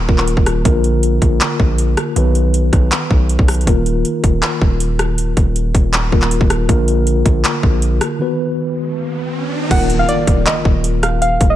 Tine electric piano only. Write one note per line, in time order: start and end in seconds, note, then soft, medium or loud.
0.08 0.65 D#3 medium
0.08 0.64 A#3 soft
0.08 0.64 F4 soft
0.08 0.65 A#4 medium
0.64 2.12 D3 medium
0.64 2.13 A#3 medium
0.64 2.13 F4 medium
0.64 2.14 A#4 medium
2.15 3.64 D#3 medium
2.15 3.64 B3 medium
2.15 3.65 F#4 medium
2.15 3.65 B4 medium
3.66 6.08 D#3 medium
3.66 6.08 A#3 medium
3.66 6.09 F4 medium
3.66 6.09 A#4 medium
6.11 6.69 D#3 medium
6.11 6.67 A#3 soft
6.11 6.68 F4 soft
6.11 6.69 A#4 medium
6.68 8.16 D3 medium
6.68 8.17 A#3 medium
6.68 8.17 F4 medium
6.68 8.18 A#4 medium
8.19 9.67 D#3 medium
8.19 9.68 B3 medium
8.19 9.68 F#4 medium
8.19 9.69 B4 medium
9.69 11.56 D#3 medium
9.69 11.56 A#3 medium
9.69 11.56 F4 medium
9.69 11.56 A#4 medium